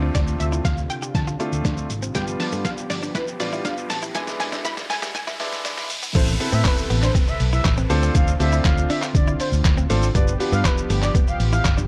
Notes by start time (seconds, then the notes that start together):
Already playing: C3 D3 A3 C4 D4 F4 C5, downlifter, riser
0.02 D4
0.15 D2 D4 D5, kick, snare, closed hi-hat, shaker
0.27 shaker
0.40 D2 E5, muted clean electric guitar stroke, closed hi-hat, shaker
0.52 E4, shaker
0.65 D2 F4 F5, kick, snare, closed hi-hat, shaker
0.77 shaker
0.90 G5, muted clean electric guitar stroke, closed hi-hat, shaker
1.02 G4, shaker
1.15 D3 A5, muted clean electric guitar stroke, kick, snare, closed hi-hat, shaker
1.27 F4, shaker
1.40 A3 C4 D4 E4 F4, closed hi-hat, shaker
1.52 D2, shaker
1.65 D2 D4, kick, snare, closed hi-hat, shaker
1.77 muted clean electric guitar stroke, shaker
1.90 G#1, closed hi-hat, shaker
2.02 C4, shaker
2.15 G1 F3 G3 B3 D4 F4 G4 G5, kick, snare, closed hi-hat, shaker
2.27 shaker
2.40 A5, muted clean electric guitar stroke, snare, open hi-hat, shaker
2.52 G2 A3, shaker
2.65 B3 F5, kick, snare, closed hi-hat, shaker
2.77 shaker
2.90 G1 D5, muted clean electric guitar stroke, snare, open hi-hat, shaker
3.02 D4, shaker
3.15 E4 B4, kick, snare, closed hi-hat, shaker
3.27 muted clean electric guitar stroke, shaker
3.40 A1 G3 B3 D4 F4 D5, snare, open hi-hat, shaker
3.53 E4, shaker
3.65 G1 D4 F5, kick, snare, closed hi-hat, shaker
3.77 shaker
3.90 A1 A5, muted clean electric guitar stroke, snare, open hi-hat, shaker
4.02 E4, shaker
4.15 G#1 D3 G#3 B3 D4 E4 G#5, kick, snare, closed hi-hat, shaker
4.27 snare, shaker
4.40 G#1 G#5, muted clean electric guitar stroke, snare, open hi-hat, shaker
4.52 D4, snare, shaker
4.65 G#1 E4 B5, kick, snare, closed hi-hat, shaker
4.77 snare, shaker
4.90 G#5, muted clean electric guitar stroke, snare, open hi-hat, shaker
5.02 G4, snare, shaker
5.15 G#2 G#5, muted clean electric guitar stroke, kick, snare, closed hi-hat, shaker
5.27 E4, snare, shaker
5.40 G#3 B3 D4 E4, snare, open hi-hat, shaker
5.52 G#1, snare, shaker
5.65 B1 D4, snare, closed hi-hat, shaker
5.77 muted clean electric guitar stroke, snare, shaker
5.90 A#1, open hi-hat, shaker
6.02 B3, shaker
6.15 A1 C3 A3 B3 C4 E4 A4 B4 C5, kick, closed hi-hat, crash, downlifter, shaker
6.27 shaker
6.40 B3 C4 E4 A4 B4, muted clean electric guitar stroke, open hi-hat, shaker
6.52 A2 C4 E5, shaker
6.65 B4, kick, snare, clap, closed hi-hat, shaker
6.77 shaker
6.90 A1 B3, open hi-hat, shaker
7.02 D4 C5, clap, shaker
7.15 C4, kick, closed hi-hat, shaker
7.27 E5, muted clean electric guitar stroke, shaker
7.40 B1, open hi-hat, shaker
7.53 E4 E5, shaker
7.65 A1, kick, snare, clap, closed hi-hat, shaker
7.77 C4, shaker
7.90 D2 D3 C4 D4 F4 A4 C5, muted clean electric guitar stroke, open hi-hat, shaker
8.02 C4, shaker
8.15 D2 D4 F5, kick, closed hi-hat, shaker
8.27 shaker
8.39 D2 C4 D4 F4 A4 C5 E5, muted clean electric guitar stroke, open hi-hat, shaker
8.52 E4, shaker
8.65 D2 F5, muted clean electric guitar stroke, kick, snare, clap, closed hi-hat, shaker
8.78 shaker
8.90 D4 E5, open hi-hat, shaker
9.02 F4, clap, shaker
9.15 D3 D5, muted clean electric guitar stroke, kick, closed hi-hat, shaker
9.27 E4, shaker
9.39 D4 C5, open hi-hat, shaker
9.52 D2, shaker
9.65 D2, muted clean electric guitar stroke, kick, snare, clap, closed hi-hat, shaker
9.77 C4, shaker
9.89 G#1 A3 C4 D4 F4 A4 C5, open hi-hat, shaker
10.02 shaker
10.14 G1 F3 G3 B3 D4 F4 G4 B4 D5, kick, closed hi-hat, shaker
10.27 shaker
10.40 B3 D4 F4 G4 B4, muted clean electric guitar stroke, open hi-hat, shaker
10.52 G2 B3 F5, shaker
10.65 B4, kick, snare, clap, closed hi-hat, shaker
10.77 shaker
10.90 G1 A3, open hi-hat, shaker
11.02 D4 D5, clap, shaker
11.15 B3, kick, closed hi-hat, shaker
11.27 F5, muted clean electric guitar stroke, shaker
11.40 A1, open hi-hat, shaker
11.53 E4 F5, shaker
11.65 G1, kick, snare, clap, closed hi-hat, shaker
11.77 D4, shaker